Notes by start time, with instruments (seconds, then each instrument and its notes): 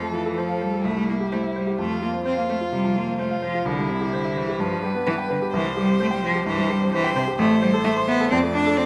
Already playing: grand piano F2, cello F3, violin A4
0.02 grand piano A3
0.14 cello E3, grand piano F4
0.26 grand piano A4
0.37 cello F3, violin A4, grand piano C5
0.49 grand piano F5
0.61 cello G3, grand piano C5
0.73 grand piano A4
0.84 grand piano C2, cello A3, violin E4
0.96 grand piano G3
1.09 cello A#3, grand piano E4
1.20 grand piano G4
1.32 cello A3, grand piano C5
1.43 grand piano E5
1.56 cello G3, grand piano C5
1.67 grand piano G4
1.79 grand piano F2, cello A3, violin F4
1.91 grand piano F3
2.02 cello A#3, grand piano F4
2.14 grand piano C4
2.25 cello C4, violin F4, grand piano C5
2.37 cello A#3, grand piano F5
2.49 cello A3, grand piano C5
2.61 grand piano F4
2.72 grand piano C3, cello G3
2.84 grand piano F3
2.96 cello A#3, grand piano F4
3.07 grand piano C4
3.18 cello A3, violin F4, grand piano C5
3.31 grand piano F5
3.42 cello F3, grand piano C5
3.54 grand piano F4
3.66 grand piano C2, cello D3, violin E4
3.78 grand piano G3
3.89 cello C3, grand piano E4
4.01 grand piano G4
4.13 cello D3, grand piano C5
4.25 grand piano E5
4.36 cello E3, grand piano C5
4.49 grand piano G4
4.60 grand piano G2, cello F3, violin B4
4.72 grand piano G3
4.83 cello G3, grand piano G4
4.95 grand piano B3
5.07 cello E3, grand piano B4
5.18 grand piano G5
5.30 cello D3, grand piano B4
5.42 grand piano G4
5.53 grand piano C2, cello E3, violin C5
5.65 grand piano G3
5.77 cello G3, grand piano G4
5.89 grand piano C4
6.00 cello A3, grand piano C5
6.11 cello G3, grand piano G5
6.23 cello F3, grand piano C5
6.35 grand piano G4
6.46 grand piano G2, cello E3, violin C5
6.58 grand piano G3
6.70 cello G3, grand piano G4
6.81 grand piano C4
6.92 cello E3, violin C5, grand piano C5
7.04 grand piano G5
7.15 cello C3, grand piano C5
7.27 grand piano G4
7.38 grand piano A1, cello A3, violin C5
7.50 grand piano A3
7.62 cello G3, grand piano C5
7.73 grand piano A4
7.84 cello A3, grand piano E5
7.97 grand piano C6
8.08 cello B3, grand piano E5
8.20 grand piano A4
8.30 grand piano F2, cello C4, violin D5
8.43 grand piano A3
8.54 cello D4, grand piano D5
8.66 grand piano A4
8.77 cello C4, grand piano D5